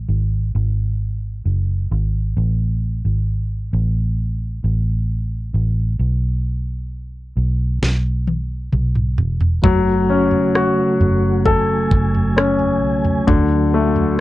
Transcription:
0.09 0.51 G#1 medium
0.55 1.42 G#1 medium
1.46 1.88 F#1 medium
1.91 2.34 G#1 medium
2.37 3.01 A1 medium
3.05 3.69 G#1 medium
3.73 4.60 A1 medium
4.64 5.51 A1 medium
5.54 5.97 A1 medium
5.99 7.32 B1 medium
7.37 7.79 B1 medium
7.82 8.69 B1 medium
7.82 snare soft
8.27 high tom medium
8.72 9.15 B1 medium
8.72 mid tom medium
8.95 mid tom medium
9.18 9.61 E1 medium
9.18 floor tom medium
9.41 floor tom medium
9.62 10.32 F#1 medium
9.62 13.23 C#3 medium
9.62 14.20 F#3 medium
9.62 13.23 F#3 medium
9.62 14.20 A3 soft
9.62 11.43 F#4 medium
9.62 kick medium
9.62 floor tom medium
10.10 11.87 C#4 soft
10.31 10.96 E1 medium
10.31 floor tom soft
10.55 12.33 F#4 soft
10.55 cross-stick medium
11.01 11.87 F#1 medium
11.01 floor tom soft
11.46 13.23 A4 medium
11.46 13.26 G#5 medium
11.46 kick medium
11.46 floor tom soft
11.91 12.83 F#1 medium
11.91 kick medium
12.15 floor tom soft
12.37 13.25 C#4 soft
12.37 cross-stick loud
12.59 floor tom soft
12.83 13.25 B1 medium
13.05 floor tom medium
13.27 14.20 D2 medium
13.27 14.20 D3 medium
13.27 14.20 F#4 medium
13.27 kick loud
13.27 floor tom medium
13.74 14.20 A3 soft
13.96 floor tom soft

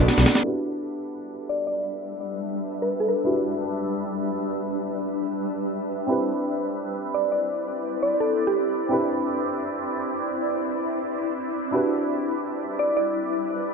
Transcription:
0.00 0.45 B3 medium
0.00 0.42 D4 medium
0.00 0.44 F#4 medium
0.00 0.41 A4 medium
0.00 0.45 A4 medium
0.00 0.46 B4 medium
0.00 0.46 D5 loud
0.00 0.41 F#5 medium
0.00 0.41 B5 medium
0.00 0.40 D6 medium
0.08 snare medium
0.08 closed hi-hat medium
0.18 0.25 B1 medium
0.18 snare medium
0.18 closed hi-hat soft
0.26 snare medium
0.26 open hi-hat medium
0.26 cabasa medium
0.35 snare medium
0.35 closed hi-hat soft
0.42 6.05 G3 medium
0.42 3.22 D4 medium
0.42 6.05 D4 medium
0.42 3.23 E4 medium
0.42 3.24 F#4 medium
0.42 3.25 G4 medium
0.42 11.69 B4 medium
0.42 6.05 E5 medium
0.46 3.25 B4 medium
1.49 1.66 D5 medium
1.67 1.89 D5 medium
2.82 2.98 B4 medium
3.00 3.07 A4 medium
3.08 3.44 B4 medium
3.24 6.05 D4 medium
3.24 6.06 E4 medium
3.24 6.06 F#4 medium
3.24 6.07 G4 medium
3.28 6.07 B4 medium
6.07 8.87 C4 medium
6.07 11.69 C4 medium
6.07 8.88 D4 medium
6.07 13.74 E4 medium
6.07 8.89 E4 medium
6.07 8.89 G4 medium
6.07 11.69 D5 medium
6.11 8.90 B4 medium
7.14 7.30 D5 medium
7.32 7.53 D5 medium
8.03 8.19 D5 medium
8.20 8.45 A4 medium
8.47 8.82 G4 medium
8.89 11.70 C4 medium
8.89 11.70 D4 medium
8.89 11.71 E4 medium
8.89 11.72 G4 medium
8.93 11.72 B4 medium
11.71 13.74 G3 medium
11.71 13.74 D4 medium
11.71 13.74 E4 medium
11.71 13.74 F#4 medium
11.71 13.74 G4 medium
11.71 13.74 B4 medium
11.71 13.74 D5 medium
11.75 13.74 B4 medium
12.79 12.95 D5 medium
12.97 13.18 D5 medium

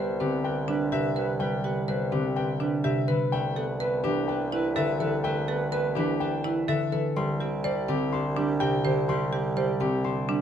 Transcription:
0.00 3.19 C2 medium
0.00 0.67 G3 medium
0.00 1.63 B3 medium
0.00 0.14 B4 medium
0.00 0.28 B4 loud
0.00 0.28 C5 medium
0.20 1.15 D3 loud
0.20 0.52 C4 medium
0.20 0.52 G4 loud
0.20 0.37 B4 medium
0.44 2.35 C4 medium
0.44 0.61 B4 medium
0.44 0.76 G5 medium
0.68 1.39 G3 medium
0.68 1.00 D4 loud
0.68 0.85 B4 medium
0.92 2.83 C3 loud
0.92 1.24 G4 medium
0.92 1.09 B4 medium
0.92 1.24 E5 loud
1.16 2.11 D3 medium
1.16 1.48 B4 medium
1.16 1.33 B4 medium
1.16 1.48 B4 medium
1.40 1.87 G3 loud
1.40 1.57 B4 medium
1.40 1.71 G5 medium
1.64 3.55 B3 medium
1.64 1.96 G4 medium
1.64 1.81 B4 medium
1.88 2.60 G3 medium
1.88 2.20 B4 loud
1.88 2.05 B4 medium
1.88 2.20 C5 medium
2.12 3.07 D3 loud
2.12 2.44 C4 medium
2.12 2.44 G4 medium
2.12 2.29 B4 medium
2.36 3.34 C4 medium
2.36 2.53 B4 medium
2.36 2.68 G5 medium
2.60 6.51 G3 medium
2.60 2.92 D4 medium
2.60 2.77 B4 medium
2.84 3.34 C3 loud
2.84 3.16 G4 medium
2.84 3.01 B4 soft
2.84 3.16 E5 loud
3.08 3.35 D3 medium
3.08 3.39 B4 medium
3.08 3.40 B4 medium
3.32 7.03 C2 medium
3.32 3.79 A3 loud
3.32 3.49 B4 soft
3.32 3.64 G5 loud
3.56 5.47 B3 medium
3.56 3.88 A4 medium
3.56 3.73 B4 medium
3.80 4.51 A3 medium
3.80 4.12 B4 loud
3.80 4.12 B4 medium
3.80 3.97 B4 medium
4.04 4.99 E3 loud
4.04 4.36 D4 medium
4.04 4.35 G4 loud
4.04 4.22 B4 medium
4.28 6.19 D4 medium
4.28 4.46 B4 medium
4.28 4.60 G5 medium
4.52 5.23 A3 medium
4.52 4.84 E4 loud
4.52 4.70 B4 loud
4.76 6.67 D3 loud
4.76 5.08 A4 medium
4.76 4.93 B4 loud
4.76 5.07 E5 loud
5.00 5.96 E3 medium
5.00 5.31 A4 medium
5.00 5.32 B4 medium
5.00 5.17 B4 loud
5.24 5.71 A3 loud
5.24 5.41 B4 medium
5.24 5.55 G5 loud
5.48 7.18 B3 medium
5.48 5.80 A4 medium
5.48 5.65 B4 medium
5.72 6.43 A3 medium
5.72 6.03 B4 medium
5.72 6.04 B4 loud
5.72 5.89 B4 loud
5.95 6.91 E3 loud
5.95 6.28 D4 medium
5.95 6.27 G4 loud
5.95 6.13 B4 medium
6.20 7.18 D4 medium
6.20 6.37 B4 medium
6.20 6.52 G5 medium
6.44 7.18 A3 medium
6.44 6.76 E4 loud
6.44 6.62 B4 medium
6.68 7.18 D3 loud
6.68 7.00 A4 loud
6.68 6.86 B4 soft
6.68 7.00 E5 loud
6.92 7.18 E3 medium
6.92 7.24 A4 medium
6.92 7.24 B4 medium
7.16 10.41 C2 loud
7.16 7.64 G3 loud
7.16 7.33 G4 soft
7.16 7.48 C6 medium
7.40 9.31 C4 medium
7.40 7.72 G4 medium
7.40 7.57 G4 medium
7.64 8.36 G3 medium
7.64 7.81 G4 medium
7.64 7.96 C5 loud
7.64 7.96 D5 medium
7.88 8.83 D3 loud
7.88 8.20 C4 medium
7.88 8.06 G4 medium
7.88 8.20 G4 loud
8.13 10.03 D4 medium
8.13 8.29 G4 medium
8.13 8.44 C6 medium
8.37 9.08 G3 medium
8.37 8.68 D4 loud
8.37 8.53 G4 loud
8.60 10.41 C3 loud
8.60 8.92 G4 medium
8.60 8.78 G4 loud
8.60 8.92 G5 loud
8.84 9.79 D3 medium
8.84 9.01 G4 medium
8.84 9.16 C5 medium
9.09 9.55 G3 loud
9.09 9.26 G4 loud
9.09 9.40 C6 loud
9.32 10.41 C4 medium
9.32 9.64 G4 medium
9.32 9.50 G4 medium
9.56 10.27 G3 medium
9.56 9.74 G4 loud
9.56 9.88 C5 loud
9.56 9.88 D5 medium
9.80 10.41 D3 loud
9.80 10.12 C4 medium
9.80 10.12 G4 loud
9.80 9.98 G4 medium
10.04 10.41 D4 medium
10.04 10.22 G4 medium
10.04 10.36 C6 medium
10.29 10.41 G3 medium
10.29 10.41 D4 loud
10.29 10.41 G4 medium

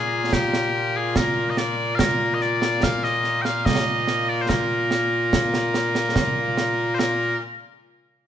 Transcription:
0.00 7.38 A#2 medium
0.00 7.38 A#3 medium
0.00 7.38 F4 medium
0.00 0.33 G#4 medium
0.33 0.96 G4 medium
0.33 concert bass drum medium
0.33 snare loud
0.53 snare medium
0.96 1.17 G#4 medium
1.16 1.50 A#4 medium
1.16 concert bass drum medium
1.16 snare medium
1.50 1.58 D#5 medium
1.57 1.95 D5 medium
1.57 snare medium
1.95 1.99 F5 loud
1.99 2.34 A#4 loud
1.99 concert bass drum medium
1.99 snare loud
2.34 2.42 D#5 medium
2.41 2.83 D5 medium
2.41 snare soft
2.62 snare medium
2.83 3.04 F5 loud
2.83 concert bass drum soft
2.83 snare medium
3.04 3.42 D#5 medium
3.04 snare soft
3.24 snare soft
3.42 3.66 F5 medium
3.42 3.45 G5 medium
3.42 snare medium
3.66 4.29 D#5 medium
3.66 concert bass drum medium
3.66 snare medium
4.08 snare medium
4.29 4.41 D5 medium
4.41 4.49 C5 medium
4.49 6.95 A#4 medium
4.49 concert bass drum medium
4.49 snare medium
4.91 snare medium
5.33 concert bass drum medium
5.33 snare medium
5.54 snare medium
5.74 snare medium
5.95 snare medium
6.16 concert bass drum medium
6.16 snare loud
6.58 snare medium
6.95 6.99 C5 medium
6.99 7.38 A#4 medium
6.99 snare medium

